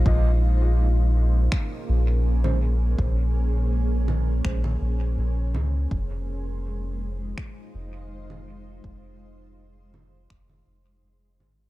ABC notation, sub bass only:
X:1
M:4/4
L:1/8
Q:1/4=82
K:Bbm
V:1 name="Sub bass" clef=bass
B,,,4 z B,,,3 | B,,,4 B,,, B,,, B,,, D,, | F,,,4 z F,,,3 | F,,,4 F,,, F,,, F,,, A,,, |]